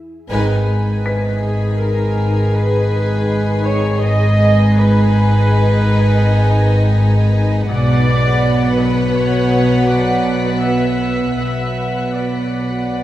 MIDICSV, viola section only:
0, 0, Header, 1, 2, 480
1, 0, Start_track
1, 0, Key_signature, 5, "minor"
1, 0, Tempo, 742574
1, 197, Time_signature, 5, 2, 24, 8
1, 3552, Tempo, 731707
1, 6912, Tempo, 759494
1, 8440, End_track
2, 0, Start_track
2, 0, Title_t, "Viola section"
2, 0, Program_c, 0, 48
2, 196, Note_on_c, 0, 71, 71
2, 894, Note_off_c, 0, 71, 0
2, 920, Note_on_c, 0, 68, 60
2, 1159, Note_on_c, 0, 70, 67
2, 1160, Note_off_c, 0, 68, 0
2, 1638, Note_on_c, 0, 71, 77
2, 1639, Note_off_c, 0, 70, 0
2, 2354, Note_on_c, 0, 73, 81
2, 2355, Note_off_c, 0, 71, 0
2, 2593, Note_off_c, 0, 73, 0
2, 2593, Note_on_c, 0, 75, 97
2, 3062, Note_off_c, 0, 75, 0
2, 3073, Note_on_c, 0, 71, 90
2, 4749, Note_off_c, 0, 71, 0
2, 4986, Note_on_c, 0, 74, 100
2, 5683, Note_off_c, 0, 74, 0
2, 5711, Note_on_c, 0, 71, 71
2, 5946, Note_on_c, 0, 73, 83
2, 5949, Note_off_c, 0, 71, 0
2, 6422, Note_on_c, 0, 74, 68
2, 6423, Note_off_c, 0, 73, 0
2, 6906, Note_on_c, 0, 76, 63
2, 6909, Note_off_c, 0, 74, 0
2, 7376, Note_off_c, 0, 76, 0
2, 7383, Note_on_c, 0, 76, 52
2, 7859, Note_off_c, 0, 76, 0
2, 7867, Note_on_c, 0, 74, 37
2, 8440, Note_off_c, 0, 74, 0
2, 8440, End_track
0, 0, End_of_file